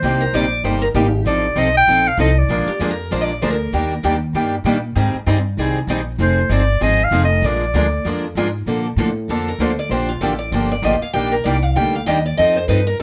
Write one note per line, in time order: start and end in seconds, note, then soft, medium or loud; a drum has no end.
0.00 0.32 C2 medium
0.00 0.22 C3 medium
0.00 0.23 G3 medium
0.00 0.23 D#4 medium
0.00 0.53 C5 medium
0.04 0.23 A#3 medium
0.04 0.23 G4 medium
0.21 0.34 A#4 medium
0.33 0.63 A#1 medium
0.33 0.44 C3 medium
0.33 0.44 G3 medium
0.33 0.45 A#3 medium
0.33 0.45 D#4 medium
0.33 0.45 G4 medium
0.33 0.64 D5 medium
0.64 0.94 G1 medium
0.64 0.84 C3 medium
0.64 0.84 G3 medium
0.64 0.84 A#3 medium
0.64 0.84 D#4 medium
0.64 0.84 G4 medium
0.64 0.83 C5 medium
0.82 0.87 A#4 medium
0.94 1.24 G#1 medium
0.94 1.05 C3 medium
0.94 1.06 G3 medium
0.94 1.06 A#3 medium
0.94 1.06 D#4 loud
0.94 1.06 G4 loud
0.94 1.20 G4 medium
1.25 1.55 A1 medium
1.25 1.45 F3 medium
1.25 1.45 C4 medium
1.25 1.46 D#4 medium
1.25 1.46 A4 medium
1.25 1.60 D5 medium
1.56 1.86 B1 medium
1.56 1.67 F3 medium
1.56 1.67 C4 medium
1.56 1.67 D#4 medium
1.56 1.67 A4 loud
1.56 1.76 D#5 medium
1.77 2.09 G5 loud
1.88 2.17 A#1 medium
1.88 2.07 F3 medium
1.88 2.07 C4 medium
1.88 2.07 D#4 medium
1.88 2.07 A4 medium
2.08 2.20 F5 medium
2.18 2.48 C2 medium
2.18 2.29 F3 medium
2.18 2.29 C4 medium
2.18 2.29 D#4 loud
2.18 2.30 A4 loud
2.18 2.40 D#5 medium
2.39 2.99 D5 medium
2.49 2.66 A#1 medium
2.49 2.69 D3 medium
2.49 2.69 F3 medium
2.49 2.69 G#3 medium
2.49 2.69 A#3 medium
2.49 2.69 D4 medium
2.49 2.69 F4 medium
2.49 2.69 G#4 medium
2.49 2.69 A#4 medium
2.67 2.80 G4 medium
2.67 muted upright bass stroke soft
2.79 3.10 F2 medium
2.79 2.91 D3 medium
2.79 2.91 F3 medium
2.79 2.91 G#3 medium
2.79 2.91 A#3 medium
2.79 2.91 D4 medium
2.79 2.91 F4 medium
2.79 2.90 G#4 medium
2.79 2.91 G#4 medium
2.79 2.91 A#4 medium
2.91 3.13 A#4 medium
3.11 3.41 A#1 medium
3.11 3.30 D3 medium
3.11 3.30 F3 medium
3.11 3.31 G#3 medium
3.11 3.31 A#3 medium
3.11 3.31 D4 medium
3.11 3.31 F4 medium
3.11 3.31 G#4 medium
3.11 3.31 A#4 medium
3.11 3.21 C5 loud
3.21 3.42 D5 loud
3.42 3.72 D2 medium
3.42 3.52 D3 medium
3.42 3.52 F3 medium
3.42 3.53 G#3 medium
3.42 3.53 A#3 medium
3.42 3.53 D4 medium
3.42 3.53 F4 loud
3.42 3.53 G#4 medium
3.42 3.53 A#4 medium
3.42 3.50 C5 medium
3.50 4.12 A#4 medium
3.73 4.03 D#2 medium
3.73 3.92 D#3 medium
3.73 3.92 G3 medium
3.73 3.93 A#3 medium
3.73 3.93 D4 medium
3.73 3.93 G4 medium
4.04 4.33 D#2 medium
4.04 4.14 D#3 medium
4.04 4.14 G3 medium
4.04 4.14 A#3 medium
4.04 4.15 D4 medium
4.04 4.15 G4 medium
4.33 4.63 G2 medium
4.33 4.54 D#3 medium
4.33 4.54 G3 medium
4.33 4.54 A#3 medium
4.33 4.54 D4 medium
4.33 4.54 G4 medium
4.64 4.95 A#2 medium
4.64 4.76 D#3 medium
4.64 4.76 G3 medium
4.64 4.76 A#3 medium
4.64 4.76 D4 medium
4.64 4.76 G4 loud
4.95 5.13 G#2 medium
4.95 5.15 D#3 medium
4.95 5.15 G3 medium
4.95 5.15 C4 medium
4.95 5.15 D#4 medium
4.95 5.16 G#4 medium
5.14 muted upright bass stroke soft
5.26 5.57 G2 medium
5.26 5.37 D#3 medium
5.26 5.37 G3 medium
5.26 5.37 C4 medium
5.26 5.38 D#4 medium
5.26 5.38 G#4 medium
5.57 5.87 C2 medium
5.57 5.78 D#3 medium
5.57 5.78 G3 medium
5.57 5.78 C4 medium
5.57 5.78 D#4 medium
5.57 5.78 G#4 medium
5.87 6.18 A#1 medium
5.87 6.00 D#3 medium
5.87 6.00 G3 medium
5.87 6.00 C4 medium
5.87 6.00 D#4 medium
5.87 6.00 G#4 loud
6.18 6.49 F1 medium
6.18 6.39 F3 medium
6.18 6.39 C4 medium
6.18 6.39 D#4 medium
6.18 6.40 G#4 medium
6.18 6.50 C5 medium
6.49 6.80 G1 medium
6.49 6.60 F3 medium
6.49 6.61 C4 medium
6.49 6.61 D#4 medium
6.49 6.61 G#4 medium
6.49 6.85 D5 medium
6.80 7.10 G#1 medium
6.80 7.00 F3 medium
6.80 7.00 C4 medium
6.80 7.01 D#4 medium
6.80 7.01 G#4 medium
6.80 7.05 D#5 loud
7.04 7.24 F5 loud
7.11 7.41 F1 medium
7.11 7.23 F3 medium
7.11 7.23 C4 medium
7.11 7.23 D#4 loud
7.11 7.23 G#4 loud
7.25 7.47 D#5 medium
7.42 7.73 A#1 medium
7.42 7.62 D3 medium
7.42 7.63 F3 medium
7.42 7.63 G#3 medium
7.42 7.63 A#3 medium
7.42 7.63 D4 medium
7.42 7.63 F4 medium
7.42 7.63 G#4 medium
7.42 7.63 A#4 medium
7.42 8.37 D5 medium
7.73 8.04 D2 medium
7.73 7.85 D3 medium
7.73 7.85 F3 medium
7.73 7.85 G#3 medium
7.73 7.85 A#3 medium
7.73 7.85 D4 medium
7.73 7.85 F4 medium
7.73 7.85 G#4 medium
7.73 7.85 A#4 medium
8.05 8.35 F2 medium
8.05 8.25 D3 medium
8.05 8.24 F3 medium
8.05 8.25 G#3 medium
8.05 8.25 A#3 medium
8.05 8.24 D4 medium
8.05 8.25 F4 medium
8.05 8.26 G#4 medium
8.05 8.25 A#4 medium
8.35 8.66 G#2 medium
8.35 8.47 D3 medium
8.35 8.47 F3 medium
8.35 8.47 G#3 medium
8.35 8.47 A#3 medium
8.35 8.47 D4 medium
8.35 8.47 F4 medium
8.35 8.47 G#4 medium
8.35 8.47 A#4 medium
8.66 8.96 A#2 medium
8.66 8.86 D3 medium
8.66 8.86 F3 medium
8.66 8.87 A#3 medium
8.66 8.87 D4 medium
8.66 8.87 A4 medium
8.96 9.27 A2 medium
8.96 9.08 D3 medium
8.96 9.09 F3 medium
8.96 9.09 A#3 medium
8.96 9.09 D4 medium
8.96 9.09 A4 medium
9.28 9.58 F2 medium
9.28 9.49 D3 medium
9.28 9.49 F3 medium
9.28 9.49 A#3 medium
9.28 9.49 D4 medium
9.28 9.47 A4 medium
9.28 9.49 A4 medium
9.48 9.60 A#4 medium
9.58 9.89 D2 medium
9.58 9.70 D3 medium
9.58 9.70 F3 medium
9.58 9.70 A#3 medium
9.58 9.71 D4 medium
9.58 9.71 A4 medium
9.58 9.78 C5 medium
9.79 9.91 D5 medium
9.89 10.20 A#1 medium
9.89 10.10 D3 medium
9.89 10.10 F3 medium
9.89 10.11 A#3 medium
9.89 10.11 D4 medium
9.89 10.11 G4 medium
9.89 10.08 C5 medium
10.09 10.21 F4 medium
10.21 10.51 A1 medium
10.21 10.32 D3 medium
10.21 10.32 F3 medium
10.21 10.32 A#3 medium
10.21 10.32 D4 medium
10.21 10.32 G4 medium
10.21 10.39 A4 medium
10.39 10.52 D5 loud
10.52 10.82 G1 medium
10.52 10.72 D3 medium
10.52 10.72 F3 medium
10.52 10.72 A#3 medium
10.52 10.73 D4 medium
10.52 10.73 G4 medium
10.52 10.70 C5 medium
10.72 10.85 D5 medium
10.82 10.99 A1 medium
10.82 10.94 D3 medium
10.82 10.94 F3 medium
10.82 10.94 A#3 medium
10.82 10.94 D4 loud
10.82 10.94 G4 medium
10.82 11.02 D#5 medium
11.01 11.13 F5 medium
11.01 muted upright bass stroke soft
11.13 11.44 A#1 medium
11.13 11.33 D#3 medium
11.13 11.33 G3 medium
11.13 11.34 A#3 medium
11.13 11.34 D4 medium
11.13 11.34 G4 medium
11.13 11.31 G5 loud
11.32 11.45 A#4 medium
11.44 11.75 C2 medium
11.44 11.56 D#3 medium
11.44 11.56 G3 medium
11.44 11.56 A#3 medium
11.44 11.56 D4 medium
11.44 11.56 G4 medium
11.44 11.63 D5 medium
11.63 11.75 F5 medium
11.76 12.06 D2 medium
11.76 11.95 D#3 medium
11.76 11.96 G3 medium
11.76 11.96 A#3 medium
11.76 11.96 D4 medium
11.76 11.96 G4 medium
11.76 11.95 G5 medium
11.95 12.06 F5 medium
12.06 12.37 D#2 medium
12.06 12.17 D#3 medium
12.06 12.17 G3 medium
12.06 12.17 A#3 medium
12.06 12.17 D4 medium
12.06 12.18 G4 loud
12.06 12.24 D#5 medium
12.26 12.37 D5 medium
12.37 12.68 F2 medium
12.37 12.57 F3 medium
12.37 12.58 C4 medium
12.37 12.58 D#4 medium
12.37 12.58 A4 medium
12.37 12.55 D#5 medium
12.56 12.68 C5 medium
12.68 12.98 G2 medium
12.68 12.79 F3 medium
12.68 12.79 C4 medium
12.68 12.79 D#4 medium
12.68 12.80 A4 medium
12.68 12.86 B4 medium
12.87 12.99 A#4 medium
13.00 13.03 A4 medium